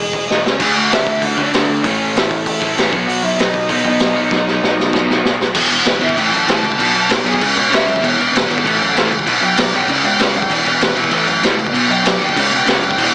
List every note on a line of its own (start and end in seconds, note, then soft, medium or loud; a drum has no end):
0.00 0.12 E1 medium
0.00 0.25 G#3 medium
0.00 0.24 G#4 medium
0.13 0.28 E1 medium
0.13 kick medium
0.28 0.44 E1 medium
0.28 0.43 D#4 medium
0.28 0.43 D#5 loud
0.28 snare medium
0.44 0.59 C#2 medium
0.44 0.59 C#4 medium
0.44 0.60 C#5 medium
0.44 snare medium
0.59 0.74 D2 loud
0.59 1.36 D3 loud
0.59 1.37 A3 loud
0.59 1.35 D4 medium
0.59 0.75 G#4 medium
0.59 0.76 G#5 loud
0.59 kick loud
0.59 open hi-hat medium
0.59 crash loud
0.76 0.91 D2 medium
0.76 0.90 F#4 medium
0.76 0.91 F#5 medium
0.92 1.06 D2 loud
0.92 1.06 E4 medium
0.92 1.07 E5 loud
0.92 snare loud
0.92 open hi-hat medium
1.07 1.21 D2 medium
1.07 1.23 E4 medium
1.07 1.23 E5 loud
1.07 kick medium
1.22 1.36 D2 medium
1.22 1.38 F#4 medium
1.22 1.37 F#5 medium
1.22 kick loud
1.22 open hi-hat medium
1.36 1.52 D2 medium
1.36 1.51 D3 medium
1.36 1.52 A3 medium
1.36 1.51 D4 medium
1.36 1.82 D4 medium
1.36 1.85 D5 loud
1.36 kick medium
1.53 1.67 D2 medium
1.53 1.83 D3 medium
1.53 1.84 A3 medium
1.53 1.84 D4 medium
1.53 snare loud
1.53 open hi-hat medium
1.69 1.83 D2 medium
1.83 2.13 A1 medium
1.83 2.60 A2 medium
1.83 2.61 E3 loud
1.83 2.59 A3 loud
1.83 2.13 C#4 medium
1.83 2.16 C#5 loud
1.83 kick loud
1.83 open hi-hat medium
2.14 2.29 A1 loud
2.14 2.74 A3 medium
2.14 2.79 A4 medium
2.14 snare loud
2.14 open hi-hat medium
2.31 2.45 A1 medium
2.31 kick medium
2.46 2.60 A1 medium
2.46 kick loud
2.46 open hi-hat medium
2.60 2.76 A1 medium
2.60 2.73 A2 medium
2.60 2.76 E3 medium
2.60 2.75 A3 medium
2.60 kick medium
2.74 2.91 A1 loud
2.74 2.90 A2 medium
2.74 2.91 E3 medium
2.74 2.92 A3 medium
2.74 open hi-hat medium
2.79 2.92 C#4 medium
2.79 2.94 C#5 medium
2.79 snare loud
2.90 3.07 B1 medium
2.90 3.66 B2 medium
2.90 3.68 F#3 medium
2.90 3.07 B3 medium
2.90 3.70 B3 medium
2.90 3.09 B4 medium
2.90 kick loud
3.06 3.22 B1 loud
3.06 3.21 F#4 medium
3.06 3.23 F#5 loud
3.06 open hi-hat medium
3.23 3.38 B1 loud
3.23 3.37 E4 medium
3.23 3.38 E5 medium
3.39 3.53 B1 loud
3.39 3.67 D#4 medium
3.39 3.69 D#5 medium
3.39 snare loud
3.39 open hi-hat medium
3.54 3.68 B1 medium
3.54 kick medium
3.67 3.83 B1 loud
3.67 3.83 B2 medium
3.67 3.83 F#3 medium
3.67 3.82 B3 medium
3.67 5.20 D#4 medium
3.67 5.20 D#5 medium
3.67 kick loud
3.67 open hi-hat medium
3.82 3.99 B1 medium
3.82 4.12 B2 medium
3.82 4.14 F#3 medium
3.82 4.16 B3 loud
3.82 kick medium
3.99 4.14 B1 medium
3.99 snare loud
3.99 open hi-hat medium
4.13 4.30 B1 medium
4.13 4.90 B2 medium
4.13 4.92 F#3 medium
4.13 4.92 B3 medium
4.31 4.60 B1 loud
4.31 kick loud
4.31 snare medium
4.48 snare medium
4.63 4.77 B1 loud
4.63 snare medium
4.78 4.92 B1 medium
4.78 snare medium
4.91 5.07 B1 medium
4.91 5.07 B2 medium
4.91 5.07 F#3 medium
4.91 5.06 B3 medium
4.91 kick loud
4.91 snare medium
5.07 5.24 B1 medium
5.07 5.40 B2 medium
5.07 5.39 F#3 medium
5.07 5.38 B3 medium
5.07 snare medium
5.25 5.39 B1 medium
5.25 snare loud
5.40 5.54 B1 medium
5.40 snare medium
5.54 5.69 E1 loud
5.54 5.68 E2 medium
5.54 5.68 B2 loud
5.54 5.70 E3 medium
5.54 kick loud
5.54 crash loud
5.54 crash medium
5.69 5.85 E1 medium
5.69 5.83 E2 medium
5.69 5.84 B2 medium
5.69 crash medium
5.84 6.00 E1 loud
5.84 5.98 E2 medium
5.84 6.00 B2 medium
5.84 6.02 B4 loud
5.84 snare loud
5.84 crash medium
6.00 6.16 G#1 medium
6.00 6.15 E2 medium
6.00 6.15 B2 loud
6.00 6.15 E3 loud
6.00 6.17 E5 medium
6.00 crash medium
6.09 kick medium
6.15 6.31 A1 medium
6.15 6.30 A2 medium
6.15 6.31 E3 medium
6.15 6.31 A3 medium
6.15 6.32 G5 medium
6.15 kick loud
6.15 crash medium
6.32 6.46 F#2 medium
6.32 6.46 A2 medium
6.32 6.46 E3 medium
6.32 6.47 A5 medium
6.32 crash medium
6.47 6.61 A1 medium
6.47 6.62 A2 medium
6.47 6.62 E3 loud
6.47 6.63 A3 loud
6.47 7.08 A5 medium
6.47 snare loud
6.47 crash medium
6.62 6.77 C#2 medium
6.62 6.77 A2 medium
6.62 6.78 E3 medium
6.62 crash medium
6.72 kick medium
6.78 6.94 B1 loud
6.78 6.93 B2 medium
6.78 6.94 F#3 loud
6.78 6.93 B3 loud
6.78 kick loud
6.78 crash medium
6.94 7.08 B1 medium
6.94 7.08 B2 medium
6.94 7.08 F#3 medium
6.94 crash medium
7.09 7.23 B1 loud
7.09 7.23 B2 medium
7.09 7.24 F#3 medium
7.09 snare loud
7.09 crash medium
7.24 7.42 B1 medium
7.24 7.39 B2 medium
7.24 7.39 F#3 loud
7.24 7.40 B3 loud
7.24 7.41 G#4 loud
7.24 crash medium
7.34 kick medium
7.39 7.55 C#2 medium
7.39 7.55 C#3 medium
7.39 7.55 G#3 medium
7.39 7.55 C#4 loud
7.39 7.57 B4 medium
7.39 kick loud
7.39 crash medium
7.56 7.71 B2 medium
7.56 7.69 C#3 medium
7.56 7.69 G#3 medium
7.56 7.72 C#5 medium
7.56 crash medium
7.70 7.86 C#2 medium
7.70 7.86 C#3 medium
7.70 7.85 G#3 medium
7.70 7.86 C#4 loud
7.70 8.03 E5 loud
7.70 snare loud
7.70 crash medium
7.87 8.01 F#2 medium
7.87 8.01 C#3 medium
7.87 8.01 G#3 medium
7.87 crash medium
7.96 kick medium
8.01 8.17 E1 loud
8.01 8.15 E2 loud
8.01 8.15 B2 loud
8.01 8.17 E3 loud
8.01 kick loud
8.01 crash medium
8.07 8.20 C#5 medium
8.16 8.33 E1 medium
8.16 8.31 E2 medium
8.16 8.31 B2 medium
8.16 crash medium
8.22 8.35 B4 medium
8.32 8.48 E1 loud
8.32 8.46 E2 medium
8.32 8.46 B2 medium
8.32 crash medium
8.37 8.51 B4 loud
8.37 snare loud
8.47 8.63 G#1 medium
8.47 8.63 E2 medium
8.47 8.63 B2 loud
8.47 8.62 E3 loud
8.47 9.10 A4 medium
8.51 crash medium
8.58 kick medium
8.63 8.79 A1 loud
8.63 8.76 A2 medium
8.63 8.77 E3 loud
8.63 8.79 A3 loud
8.63 kick loud
8.63 crash medium
8.78 8.93 A2 medium
8.78 8.93 E3 medium
8.82 8.94 F#2 medium
8.82 crash medium
8.95 9.09 A1 medium
8.95 9.08 A2 medium
8.95 9.09 E3 loud
8.95 9.10 A3 loud
8.95 snare loud
8.95 crash medium
9.09 9.25 C#2 medium
9.09 9.24 A2 medium
9.09 9.25 E3 medium
9.09 crash medium
9.19 kick medium
9.25 9.41 B1 loud
9.25 9.40 B2 loud
9.25 9.41 F#3 loud
9.25 9.41 B3 loud
9.25 kick loud
9.25 crash medium
9.41 9.56 B1 loud
9.41 9.55 B2 medium
9.41 9.56 F#3 medium
9.41 9.58 G5 loud
9.41 crash medium
9.57 9.72 B1 loud
9.57 9.71 B2 medium
9.57 9.71 F#3 medium
9.57 9.74 D5 medium
9.57 snare loud
9.57 crash medium
9.73 9.88 B1 medium
9.73 9.88 B2 loud
9.73 9.88 F#3 loud
9.73 9.88 B3 loud
9.73 9.90 G5 loud
9.73 crash medium
9.81 kick medium
9.88 10.03 C#2 medium
9.88 10.03 C#3 medium
9.88 10.04 G#3 medium
9.88 10.04 C#4 medium
9.88 10.05 D5 loud
9.88 kick loud
9.88 crash medium
10.04 10.18 B2 medium
10.04 10.18 C#3 medium
10.04 10.18 G#3 medium
10.04 10.20 G5 medium
10.04 crash medium
10.19 10.33 C#2 medium
10.19 10.34 C#3 medium
10.19 10.35 G#3 loud
10.19 10.35 C#4 loud
10.19 10.35 D5 medium
10.19 snare loud
10.19 crash medium
10.35 10.49 F#2 medium
10.35 10.49 C#3 medium
10.35 10.50 G#3 medium
10.35 10.51 G5 medium
10.35 crash medium
10.42 kick medium
10.50 10.64 E1 medium
10.50 10.64 E2 loud
10.50 10.64 B2 loud
10.50 10.66 E3 loud
10.50 10.68 D5 medium
10.50 kick loud
10.50 crash medium
10.65 10.80 E1 medium
10.65 10.79 E2 medium
10.65 10.79 B2 medium
10.65 11.27 B4 loud
10.65 crash medium
10.81 10.94 E1 loud
10.81 10.94 E2 medium
10.81 10.95 B2 medium
10.81 snare loud
10.81 crash medium
10.95 11.12 E1 medium
10.95 11.11 E2 loud
10.95 11.10 B2 medium
10.95 11.10 E3 loud
10.95 crash medium
11.04 kick medium
11.10 11.26 A1 medium
11.10 11.26 A2 medium
11.10 11.26 E3 medium
11.10 11.27 A3 loud
11.10 kick loud
11.10 crash medium
11.27 11.42 F#2 medium
11.27 11.41 A2 medium
11.27 11.41 E3 medium
11.27 crash medium
11.43 11.57 A1 medium
11.43 11.56 A2 loud
11.43 11.56 E3 loud
11.43 11.58 A3 loud
11.43 snare loud
11.43 crash medium
11.57 11.72 C#2 medium
11.57 11.72 A2 medium
11.57 11.72 E3 medium
11.57 crash medium
11.67 kick medium
11.73 11.88 B1 loud
11.73 11.86 B2 medium
11.73 11.87 F#3 loud
11.73 11.89 B3 loud
11.73 kick loud
11.73 crash medium
11.88 12.04 B1 loud
11.88 12.03 B2 medium
11.88 12.03 F#3 medium
11.88 crash medium
11.92 12.06 G5 loud
12.04 12.19 B1 loud
12.04 12.18 B2 medium
12.04 12.18 F#3 medium
12.04 snare loud
12.04 crash medium
12.09 12.22 D5 loud
12.19 12.35 D#2 medium
12.19 12.34 B2 medium
12.19 12.35 F#3 loud
12.19 12.35 B3 loud
12.19 crash medium
12.24 12.37 G5 loud
12.29 kick medium
12.37 12.50 C#2 medium
12.37 12.50 C#3 medium
12.37 12.50 G#3 loud
12.37 12.52 C#4 loud
12.37 12.53 D5 loud
12.37 kick loud
12.37 crash loud
12.51 12.65 B2 medium
12.51 12.65 C#3 medium
12.51 12.65 G#3 medium
12.51 crash medium
12.57 12.69 G5 loud
12.65 12.80 C#2 loud
12.65 12.81 C#3 loud
12.65 12.81 G#3 loud
12.65 12.81 C#4 loud
12.65 snare loud
12.65 crash medium
12.74 12.86 D5 medium
12.81 12.96 F#2 medium
12.81 12.96 C#3 medium
12.81 12.97 G#3 medium
12.81 crash medium
12.89 13.01 G5 loud
12.89 kick medium
12.97 13.11 E1 loud
12.97 13.11 E2 loud
12.97 13.12 B2 loud
12.97 13.13 E3 loud
12.97 kick loud
12.97 crash medium
13.04 13.14 D5 medium